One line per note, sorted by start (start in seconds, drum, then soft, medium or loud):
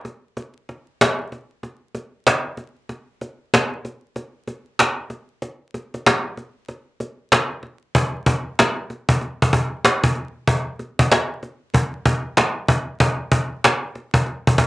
0.05 cajon slap soft
0.37 cajon slap medium
0.69 cajon slap soft
1.01 cajon slap loud
1.32 cajon slap soft
1.63 cajon slap medium
1.95 cajon slap soft
2.27 cajon slap medium
2.27 cajon slap loud
2.57 cajon slap soft
2.89 cajon slap medium
3.21 cajon slap soft
3.54 cajon slap loud
3.85 cajon slap soft
4.16 cajon slap medium
4.47 cajon slap soft
4.79 cajon slap medium
4.79 cajon slap loud
5.10 cajon slap soft
5.42 cajon slap medium
5.74 cajon slap soft
5.94 cajon slap soft
6.06 cajon slap loud
6.37 cajon slap soft
6.68 cajon slap medium
7.00 cajon slap soft
7.32 cajon slap medium
7.32 cajon slap loud
7.63 cajon slap soft
7.95 cajon bass loud
8.26 cajon bass medium
8.59 cajon slap loud
8.90 cajon slap soft
9.09 cajon bass medium
9.21 cajon slap medium
9.42 cajon bass medium
9.53 cajon bass loud
9.85 cajon slap medium
9.85 cajon slap loud
10.04 cajon bass loud
10.15 cajon slap soft
10.48 cajon bass loud
10.79 cajon slap soft
10.99 cajon bass loud
11.12 cajon slap loud
11.43 cajon slap soft
11.74 cajon bass medium
11.74 cajon slap medium
12.06 cajon bass loud
12.37 cajon slap medium
12.37 cajon slap loud
12.68 cajon bass medium
13.00 cajon bass loud
13.32 cajon bass loud
13.64 cajon slap loud
13.95 cajon slap soft
14.14 cajon bass medium
14.26 cajon slap medium
14.47 cajon bass medium
14.58 cajon bass loud